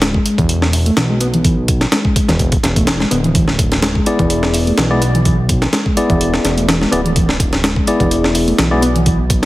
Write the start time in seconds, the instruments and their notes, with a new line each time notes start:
Already playing: analog synth bass D1
0.02 reed electric piano G#3, snare, closed hi-hat
0.14 kick
0.26 closed hi-hat
0.38 analog synth bass E1, reed electric piano E3, kick, closed hi-hat
0.49 closed hi-hat
0.62 snare
0.73 closed hi-hat, open hi-hat
0.86 reed electric piano A3, closed hi-hat
0.97 analog synth bass B1, reed electric piano E3, snare, closed hi-hat
1.10 reed electric piano G#3
1.20 reed electric piano B3, closed hi-hat
1.34 reed electric piano E3, closed hi-hat
1.45 reed electric piano E3, kick, closed hi-hat
1.68 kick, closed hi-hat
1.81 snare, closed hi-hat
1.92 reed electric piano G#3, snare, closed hi-hat
2.05 kick
2.16 kick, closed hi-hat
2.28 analog synth bass E1, reed electric piano E3, snare, closed hi-hat
2.39 kick, closed hi-hat
2.52 kick, closed hi-hat
2.63 analog synth bass E1, snare, closed hi-hat
2.76 reed electric piano A3, kick, closed hi-hat
2.87 reed electric piano E3, snare, closed hi-hat
3.00 reed electric piano G#3, snare
3.11 analog synth bass D1, reed electric piano B3, closed hi-hat
3.24 reed electric piano E3, closed hi-hat
3.35 reed electric piano E3, kick, closed hi-hat
3.48 snare
3.59 kick, closed hi-hat
3.72 snare, closed hi-hat
3.82 reed electric piano G#3, snare, closed hi-hat
3.95 kick
4.06 tine electric piano B3 E4 G#4 D5, closed hi-hat
4.19 analog synth bass E1, reed electric piano E3, kick, closed hi-hat
4.30 closed hi-hat
4.43 snare
4.54 closed hi-hat, open hi-hat
4.67 reed electric piano A3, closed hi-hat
4.78 analog synth bass B1, reed electric piano E3, snare, closed hi-hat
4.91 reed electric piano G#3, tine electric piano B3 E4 G#4 D5
5.02 reed electric piano B3, closed hi-hat
5.14 reed electric piano E3, closed hi-hat
5.25 reed electric piano E3, kick, closed hi-hat
5.49 kick, closed hi-hat
5.62 snare, closed hi-hat
5.73 reed electric piano G#3, snare, closed hi-hat
5.86 kick
5.97 tine electric piano B3 E4 G#4 D5, closed hi-hat
6.10 analog synth bass E1, reed electric piano E3, kick, closed hi-hat
6.21 closed hi-hat
6.34 snare
6.44 analog synth bass E1, snare, closed hi-hat
6.57 reed electric piano A3, closed hi-hat
6.68 reed electric piano E3, snare, closed hi-hat
6.81 reed electric piano G#3, snare
6.92 analog synth bass D1, reed electric piano B3, tine electric piano B3 E4 G#4 D5, closed hi-hat
7.05 reed electric piano E3, closed hi-hat
7.16 reed electric piano E3, kick, closed hi-hat
7.29 snare
7.40 kick, closed hi-hat
7.53 snare, closed hi-hat
7.63 reed electric piano G#3, snare, closed hi-hat
7.76 kick
7.87 tine electric piano B3 E4 G#4 D5, closed hi-hat
8.00 analog synth bass E1, reed electric piano E3, kick, closed hi-hat
8.11 closed hi-hat
8.24 snare
8.35 closed hi-hat, open hi-hat
8.47 reed electric piano A3, closed hi-hat
8.58 analog synth bass B1, reed electric piano E3, snare, closed hi-hat
8.71 reed electric piano G#3, tine electric piano B3 E4 G#4 D5
8.82 reed electric piano B3, closed hi-hat
8.95 reed electric piano E3, closed hi-hat
9.06 reed electric piano E3, kick, closed hi-hat
9.30 kick, closed hi-hat